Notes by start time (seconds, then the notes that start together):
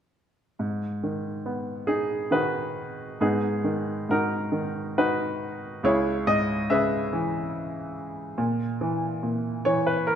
0.59 G#2
1.03 D#3
1.46 B3
1.87 D#4 G#4
2.31 D#3 D#4 F#4 B4
3.21 G#2 B3 D#4 G#4
3.64 D#3
4.09 G#2 D#4 F#4 A#4
4.52 D#3
4.98 D#4 F#4 B4
5.83 C#2 E4 G#4 C#5
6.27 G#2 D#5
6.70 C#3 G#4 B4 E5
7.13 E3
8.38 A#2
8.81 E3
9.23 A#2
9.65 E3 C#5
9.87 B4
10.07 A#4